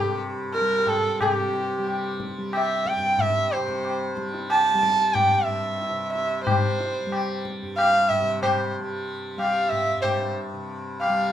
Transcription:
Already playing: G2 G3 G4
0.01 C3
0.54 A#4, tabla te
0.61 G3
0.87 A4, tabla tin, tabla ge
1.20 C3 G4, tabla na, tabla ge
1.53 tabla te
1.79 G3
1.87 tabla na
2.20 tabla ke
2.38 G3
2.53 E5, tabla na
2.86 G5, tabla ke
2.97 G2
3.18 E5, tabla tin, tabla ge
3.51 C5, tabla na
3.56 C3
3.68 tabla ke
3.84 tabla na
4.16 G3, tabla ke
4.34 tabla te
4.50 A5, tabla na
4.74 G3
4.83 tabla ke
5.14 G5, tabla na, tabla ge
5.31 G2
5.45 E5, tabla ge
5.82 tabla te
5.89 C3
6.12 E5, tabla te
6.44 G3 C5, tabla na, tabla ge
6.80 tabla te
7.06 G3
7.12 tabla na
7.45 tabla ke
7.62 G2
7.77 F5, tabla na
8.09 E5, tabla tin, tabla ge
8.20 C3
8.42 C5, tabla na, tabla ge
8.79 G3
9.37 G3 F5, tabla na
9.69 E5, tabla tin, tabla ge
9.95 G2
10.01 C5, tabla na, tabla ge
10.53 C3
11.01 F5, tabla na
11.09 G3

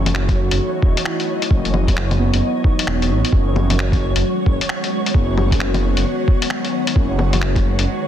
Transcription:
Already playing: F#1 E3 F#3 A3 D#4 F#4 C#5 D#5
0.06 closed hi-hat, low bongo
0.14 F#4, finger snap
0.29 kick, closed hi-hat, low bongo
0.51 F#1, closed hi-hat
0.82 E1, kick
0.97 closed hi-hat
1.05 E4, finger snap
1.20 closed hi-hat
1.42 closed hi-hat
1.50 F#1, kick
1.65 closed hi-hat
1.74 low bongo
1.88 kick, closed hi-hat, low bongo
1.97 finger snap
2.11 closed hi-hat, low bongo
2.19 B3
2.33 F#1, closed hi-hat
2.64 D#4, kick
2.79 closed hi-hat
2.87 E1, finger snap
3.01 E1, closed hi-hat
3.10 A1
3.25 closed hi-hat
3.32 F#1 D#3 G#3 B3 F#4, kick
3.56 C#4, low bongo
3.70 closed hi-hat, low bongo
3.79 finger snap
3.92 kick, closed hi-hat, low bongo
4.15 F#1, closed hi-hat
4.46 F#1, kick
4.61 closed hi-hat
4.69 finger snap
4.84 closed hi-hat
5.06 closed hi-hat
5.14 F#1 B3, kick
5.38 low bongo
5.51 kick, closed hi-hat, low bongo
5.60 finger snap
5.74 closed hi-hat, low bongo
5.97 F#1, closed hi-hat
6.28 kick
6.42 closed hi-hat
6.50 finger snap
6.65 closed hi-hat
6.87 closed hi-hat
6.96 F#1, kick
7.19 low bongo
7.33 closed hi-hat, low bongo
7.41 finger snap
7.56 kick, closed hi-hat, low bongo
7.78 F#1, closed hi-hat

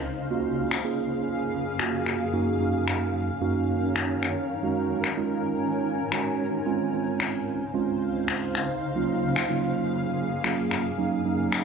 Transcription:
Already playing: C#2 C#3 D#4 C5 F5
0.17 F#2 A#3 G#4
0.31 A#3 C#4 F4 F#4
0.71 finger snap
0.84 A#3 C#4 F4 G#4
1.79 A#3 C#4 F4 F#4, finger snap
2.06 finger snap
2.33 F#2 D#3 A#3 C#4 D#4 F#4 A#4
2.60 F#2 A#3 C#4 D#4 F#4
2.88 finger snap
3.41 F#2 A#3 C#4 D#4 F#4
3.96 finger snap
4.23 finger snap
4.50 G#2 C#4 G#5
4.63 G#3 C#4 D#4 F#4
5.04 finger snap
5.17 G#3 C#4 D#4 F4
6.12 G#3 C#4 D#4 F#4, finger snap
6.66 C#2 C#3 G#3 C4 C#4 D#4 F4 C5 F5
6.93 G#3 C4 C#4 F4
7.20 finger snap
7.74 G#3 C4 C#4 F4
8.28 finger snap
8.55 finger snap
8.82 F#2 A#3 G#4
8.96 F#3 A#3 C#4 F4
9.36 finger snap
9.50 F#3 A#3 C#4 F4
10.44 F#3 A#3 C#4 F4, finger snap
10.71 finger snap
10.98 D#3 F#3 A#3 C#4 D#4 A#4
11.25 F#3 A#3 C#4 D#4
11.52 finger snap

